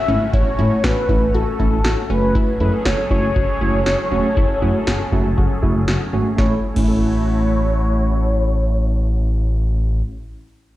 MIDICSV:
0, 0, Header, 1, 8, 480
1, 0, Start_track
1, 0, Key_signature, 3, "major"
1, 0, Tempo, 504202
1, 317, Time_signature, 4, 2, 24, 8
1, 10251, End_track
2, 0, Start_track
2, 0, Title_t, "Soft synth lead"
2, 0, Program_c, 0, 80
2, 0, Note_on_c, 0, 76, 113
2, 284, Note_off_c, 0, 76, 0
2, 320, Note_on_c, 0, 73, 109
2, 800, Note_on_c, 0, 71, 99
2, 814, Note_off_c, 0, 73, 0
2, 1274, Note_off_c, 0, 71, 0
2, 1280, Note_on_c, 0, 69, 100
2, 2000, Note_on_c, 0, 71, 103
2, 2015, Note_off_c, 0, 69, 0
2, 2474, Note_off_c, 0, 71, 0
2, 2480, Note_on_c, 0, 71, 86
2, 2587, Note_off_c, 0, 71, 0
2, 2720, Note_on_c, 0, 73, 97
2, 2942, Note_off_c, 0, 73, 0
2, 2960, Note_on_c, 0, 73, 103
2, 5560, Note_off_c, 0, 73, 0
2, 6077, Note_on_c, 0, 73, 86
2, 6211, Note_off_c, 0, 73, 0
2, 6437, Note_on_c, 0, 73, 103
2, 9539, Note_off_c, 0, 73, 0
2, 10251, End_track
3, 0, Start_track
3, 0, Title_t, "Analog synth pad"
3, 0, Program_c, 1, 89
3, 0, Note_on_c, 1, 57, 80
3, 0, Note_on_c, 1, 61, 74
3, 0, Note_on_c, 1, 66, 88
3, 1962, Note_off_c, 1, 57, 0
3, 1962, Note_off_c, 1, 61, 0
3, 1962, Note_off_c, 1, 66, 0
3, 1998, Note_on_c, 1, 61, 74
3, 1999, Note_on_c, 1, 54, 80
3, 1999, Note_on_c, 1, 68, 72
3, 1999, Note_on_c, 1, 69, 90
3, 6040, Note_off_c, 1, 54, 0
3, 6040, Note_off_c, 1, 61, 0
3, 6040, Note_off_c, 1, 68, 0
3, 6040, Note_off_c, 1, 69, 0
3, 6076, Note_on_c, 1, 66, 72
3, 6077, Note_on_c, 1, 64, 71
3, 6078, Note_on_c, 1, 57, 79
3, 6078, Note_on_c, 1, 73, 84
3, 9179, Note_off_c, 1, 64, 0
3, 9179, Note_off_c, 1, 66, 0
3, 9180, Note_off_c, 1, 57, 0
3, 9180, Note_off_c, 1, 73, 0
3, 10251, End_track
4, 0, Start_track
4, 0, Title_t, "Synth pluck"
4, 0, Program_c, 2, 84
4, 78, Note_on_c, 2, 61, 80
4, 214, Note_off_c, 2, 61, 0
4, 318, Note_on_c, 2, 64, 95
4, 454, Note_off_c, 2, 64, 0
4, 558, Note_on_c, 2, 64, 82
4, 694, Note_off_c, 2, 64, 0
4, 798, Note_on_c, 2, 66, 84
4, 934, Note_off_c, 2, 66, 0
4, 1038, Note_on_c, 2, 64, 79
4, 1174, Note_off_c, 2, 64, 0
4, 1279, Note_on_c, 2, 66, 90
4, 1415, Note_off_c, 2, 66, 0
4, 1519, Note_on_c, 2, 64, 77
4, 1655, Note_off_c, 2, 64, 0
4, 1758, Note_on_c, 2, 66, 85
4, 1894, Note_off_c, 2, 66, 0
4, 1998, Note_on_c, 2, 61, 81
4, 2134, Note_off_c, 2, 61, 0
4, 2238, Note_on_c, 2, 64, 92
4, 2374, Note_off_c, 2, 64, 0
4, 2478, Note_on_c, 2, 64, 81
4, 2614, Note_off_c, 2, 64, 0
4, 2718, Note_on_c, 2, 66, 77
4, 2854, Note_off_c, 2, 66, 0
4, 2958, Note_on_c, 2, 64, 76
4, 3094, Note_off_c, 2, 64, 0
4, 3197, Note_on_c, 2, 66, 86
4, 3334, Note_off_c, 2, 66, 0
4, 3438, Note_on_c, 2, 64, 76
4, 3574, Note_off_c, 2, 64, 0
4, 3678, Note_on_c, 2, 66, 81
4, 3814, Note_off_c, 2, 66, 0
4, 3918, Note_on_c, 2, 61, 78
4, 4054, Note_off_c, 2, 61, 0
4, 4158, Note_on_c, 2, 64, 95
4, 4294, Note_off_c, 2, 64, 0
4, 4398, Note_on_c, 2, 64, 80
4, 4534, Note_off_c, 2, 64, 0
4, 4638, Note_on_c, 2, 66, 79
4, 4774, Note_off_c, 2, 66, 0
4, 4878, Note_on_c, 2, 64, 78
4, 5014, Note_off_c, 2, 64, 0
4, 5118, Note_on_c, 2, 66, 88
4, 5254, Note_off_c, 2, 66, 0
4, 5358, Note_on_c, 2, 64, 75
4, 5494, Note_off_c, 2, 64, 0
4, 5598, Note_on_c, 2, 66, 86
4, 5734, Note_off_c, 2, 66, 0
4, 5838, Note_on_c, 2, 61, 81
4, 5974, Note_off_c, 2, 61, 0
4, 6077, Note_on_c, 2, 57, 74
4, 6115, Note_on_c, 2, 61, 72
4, 6153, Note_on_c, 2, 64, 70
4, 6191, Note_on_c, 2, 69, 72
4, 6211, Note_off_c, 2, 57, 0
4, 6231, Note_off_c, 2, 61, 0
4, 6252, Note_off_c, 2, 64, 0
4, 6272, Note_off_c, 2, 69, 0
4, 6437, Note_on_c, 2, 57, 71
4, 6475, Note_on_c, 2, 61, 69
4, 6514, Note_on_c, 2, 64, 71
4, 6552, Note_on_c, 2, 69, 70
4, 9540, Note_off_c, 2, 57, 0
4, 9578, Note_off_c, 2, 61, 0
4, 9616, Note_off_c, 2, 64, 0
4, 9654, Note_off_c, 2, 69, 0
4, 10251, End_track
5, 0, Start_track
5, 0, Title_t, "Tine electric piano"
5, 0, Program_c, 3, 4
5, 78, Note_on_c, 3, 61, 64
5, 78, Note_on_c, 3, 64, 79
5, 79, Note_on_c, 3, 57, 69
5, 230, Note_off_c, 3, 57, 0
5, 230, Note_off_c, 3, 61, 0
5, 230, Note_off_c, 3, 64, 0
5, 558, Note_on_c, 3, 61, 64
5, 559, Note_on_c, 3, 57, 72
5, 559, Note_on_c, 3, 64, 82
5, 710, Note_off_c, 3, 57, 0
5, 710, Note_off_c, 3, 61, 0
5, 710, Note_off_c, 3, 64, 0
5, 1039, Note_on_c, 3, 57, 72
5, 1039, Note_on_c, 3, 61, 64
5, 1039, Note_on_c, 3, 64, 79
5, 1190, Note_off_c, 3, 57, 0
5, 1190, Note_off_c, 3, 61, 0
5, 1190, Note_off_c, 3, 64, 0
5, 1518, Note_on_c, 3, 57, 71
5, 1518, Note_on_c, 3, 64, 83
5, 1519, Note_on_c, 3, 61, 66
5, 1669, Note_off_c, 3, 64, 0
5, 1670, Note_off_c, 3, 57, 0
5, 1670, Note_off_c, 3, 61, 0
5, 1998, Note_on_c, 3, 57, 74
5, 1998, Note_on_c, 3, 61, 67
5, 1998, Note_on_c, 3, 66, 81
5, 2382, Note_off_c, 3, 57, 0
5, 2382, Note_off_c, 3, 61, 0
5, 2382, Note_off_c, 3, 66, 0
5, 2477, Note_on_c, 3, 57, 70
5, 2477, Note_on_c, 3, 61, 65
5, 2477, Note_on_c, 3, 69, 78
5, 2629, Note_off_c, 3, 57, 0
5, 2629, Note_off_c, 3, 61, 0
5, 2629, Note_off_c, 3, 69, 0
5, 2957, Note_on_c, 3, 57, 71
5, 2957, Note_on_c, 3, 61, 67
5, 2957, Note_on_c, 3, 66, 80
5, 3109, Note_off_c, 3, 57, 0
5, 3109, Note_off_c, 3, 61, 0
5, 3109, Note_off_c, 3, 66, 0
5, 3437, Note_on_c, 3, 57, 70
5, 3437, Note_on_c, 3, 61, 65
5, 3437, Note_on_c, 3, 66, 77
5, 3589, Note_off_c, 3, 57, 0
5, 3589, Note_off_c, 3, 61, 0
5, 3589, Note_off_c, 3, 66, 0
5, 3917, Note_on_c, 3, 57, 83
5, 3917, Note_on_c, 3, 61, 74
5, 3917, Note_on_c, 3, 66, 91
5, 4069, Note_off_c, 3, 57, 0
5, 4069, Note_off_c, 3, 61, 0
5, 4069, Note_off_c, 3, 66, 0
5, 4398, Note_on_c, 3, 57, 83
5, 4398, Note_on_c, 3, 61, 74
5, 4398, Note_on_c, 3, 66, 93
5, 4549, Note_off_c, 3, 66, 0
5, 4550, Note_off_c, 3, 57, 0
5, 4550, Note_off_c, 3, 61, 0
5, 4877, Note_on_c, 3, 57, 84
5, 4877, Note_on_c, 3, 61, 77
5, 4877, Note_on_c, 3, 66, 92
5, 5029, Note_off_c, 3, 57, 0
5, 5029, Note_off_c, 3, 61, 0
5, 5029, Note_off_c, 3, 66, 0
5, 5357, Note_on_c, 3, 57, 83
5, 5357, Note_on_c, 3, 61, 74
5, 5357, Note_on_c, 3, 66, 93
5, 5509, Note_off_c, 3, 57, 0
5, 5509, Note_off_c, 3, 61, 0
5, 5509, Note_off_c, 3, 66, 0
5, 5837, Note_on_c, 3, 57, 78
5, 5837, Note_on_c, 3, 61, 72
5, 5837, Note_on_c, 3, 66, 87
5, 5989, Note_off_c, 3, 57, 0
5, 5989, Note_off_c, 3, 61, 0
5, 5989, Note_off_c, 3, 66, 0
5, 6059, Note_on_c, 3, 57, 78
5, 6078, Note_on_c, 3, 61, 68
5, 6097, Note_on_c, 3, 64, 85
5, 6201, Note_off_c, 3, 57, 0
5, 6212, Note_off_c, 3, 61, 0
5, 6222, Note_off_c, 3, 64, 0
5, 6420, Note_on_c, 3, 57, 77
5, 6439, Note_on_c, 3, 61, 71
5, 6458, Note_on_c, 3, 64, 83
5, 9523, Note_off_c, 3, 57, 0
5, 9541, Note_off_c, 3, 61, 0
5, 9560, Note_off_c, 3, 64, 0
5, 10251, End_track
6, 0, Start_track
6, 0, Title_t, "Analog synth bass"
6, 0, Program_c, 4, 38
6, 78, Note_on_c, 4, 32, 85
6, 168, Note_off_c, 4, 32, 0
6, 318, Note_on_c, 4, 33, 111
6, 408, Note_off_c, 4, 33, 0
6, 558, Note_on_c, 4, 45, 101
6, 648, Note_off_c, 4, 45, 0
6, 797, Note_on_c, 4, 33, 98
6, 887, Note_off_c, 4, 33, 0
6, 1035, Note_on_c, 4, 33, 93
6, 1126, Note_off_c, 4, 33, 0
6, 1158, Note_on_c, 4, 33, 91
6, 1247, Note_off_c, 4, 33, 0
6, 1278, Note_on_c, 4, 33, 108
6, 1368, Note_off_c, 4, 33, 0
6, 1519, Note_on_c, 4, 33, 94
6, 1608, Note_off_c, 4, 33, 0
6, 1637, Note_on_c, 4, 33, 102
6, 1727, Note_off_c, 4, 33, 0
6, 1758, Note_on_c, 4, 33, 97
6, 1847, Note_off_c, 4, 33, 0
6, 1998, Note_on_c, 4, 30, 101
6, 2267, Note_off_c, 4, 30, 0
6, 2477, Note_on_c, 4, 42, 92
6, 2567, Note_off_c, 4, 42, 0
6, 2718, Note_on_c, 4, 30, 95
6, 2807, Note_off_c, 4, 30, 0
6, 2955, Note_on_c, 4, 30, 94
6, 3045, Note_off_c, 4, 30, 0
6, 3078, Note_on_c, 4, 30, 95
6, 3167, Note_off_c, 4, 30, 0
6, 3200, Note_on_c, 4, 30, 103
6, 3289, Note_off_c, 4, 30, 0
6, 3437, Note_on_c, 4, 30, 91
6, 3527, Note_off_c, 4, 30, 0
6, 3557, Note_on_c, 4, 30, 98
6, 3647, Note_off_c, 4, 30, 0
6, 3678, Note_on_c, 4, 30, 101
6, 3768, Note_off_c, 4, 30, 0
6, 3917, Note_on_c, 4, 28, 82
6, 4007, Note_off_c, 4, 28, 0
6, 4157, Note_on_c, 4, 30, 113
6, 4247, Note_off_c, 4, 30, 0
6, 4398, Note_on_c, 4, 42, 96
6, 4488, Note_off_c, 4, 42, 0
6, 4638, Note_on_c, 4, 30, 97
6, 4727, Note_off_c, 4, 30, 0
6, 4875, Note_on_c, 4, 30, 104
6, 4966, Note_off_c, 4, 30, 0
6, 4997, Note_on_c, 4, 30, 94
6, 5087, Note_off_c, 4, 30, 0
6, 5120, Note_on_c, 4, 30, 98
6, 5209, Note_off_c, 4, 30, 0
6, 5359, Note_on_c, 4, 30, 94
6, 5448, Note_off_c, 4, 30, 0
6, 5478, Note_on_c, 4, 30, 90
6, 5567, Note_off_c, 4, 30, 0
6, 5598, Note_on_c, 4, 30, 94
6, 5688, Note_off_c, 4, 30, 0
6, 5838, Note_on_c, 4, 32, 83
6, 5928, Note_off_c, 4, 32, 0
6, 6078, Note_on_c, 4, 33, 96
6, 6211, Note_off_c, 4, 33, 0
6, 6438, Note_on_c, 4, 33, 94
6, 9540, Note_off_c, 4, 33, 0
6, 10251, End_track
7, 0, Start_track
7, 0, Title_t, "Downlifter"
7, 0, Program_c, 5, 103
7, 0, Note_on_c, 5, 60, 87
7, 2238, Note_off_c, 5, 60, 0
7, 10251, End_track
8, 0, Start_track
8, 0, Title_t, "Drums"
8, 318, Note_on_c, 9, 36, 112
8, 413, Note_off_c, 9, 36, 0
8, 799, Note_on_c, 9, 38, 108
8, 894, Note_off_c, 9, 38, 0
8, 1035, Note_on_c, 9, 36, 85
8, 1130, Note_off_c, 9, 36, 0
8, 1519, Note_on_c, 9, 36, 77
8, 1614, Note_off_c, 9, 36, 0
8, 1757, Note_on_c, 9, 38, 97
8, 1852, Note_off_c, 9, 38, 0
8, 2237, Note_on_c, 9, 36, 115
8, 2333, Note_off_c, 9, 36, 0
8, 2717, Note_on_c, 9, 38, 106
8, 2813, Note_off_c, 9, 38, 0
8, 2954, Note_on_c, 9, 36, 82
8, 3050, Note_off_c, 9, 36, 0
8, 3200, Note_on_c, 9, 36, 93
8, 3295, Note_off_c, 9, 36, 0
8, 3677, Note_on_c, 9, 38, 96
8, 3772, Note_off_c, 9, 38, 0
8, 4157, Note_on_c, 9, 36, 110
8, 4252, Note_off_c, 9, 36, 0
8, 4637, Note_on_c, 9, 38, 106
8, 4733, Note_off_c, 9, 38, 0
8, 4875, Note_on_c, 9, 36, 84
8, 4970, Note_off_c, 9, 36, 0
8, 5120, Note_on_c, 9, 36, 89
8, 5215, Note_off_c, 9, 36, 0
8, 5358, Note_on_c, 9, 36, 77
8, 5454, Note_off_c, 9, 36, 0
8, 5597, Note_on_c, 9, 38, 96
8, 5692, Note_off_c, 9, 38, 0
8, 6077, Note_on_c, 9, 36, 95
8, 6077, Note_on_c, 9, 38, 79
8, 6173, Note_off_c, 9, 36, 0
8, 6173, Note_off_c, 9, 38, 0
8, 6438, Note_on_c, 9, 36, 102
8, 6438, Note_on_c, 9, 49, 80
8, 6533, Note_off_c, 9, 36, 0
8, 6533, Note_off_c, 9, 49, 0
8, 10251, End_track
0, 0, End_of_file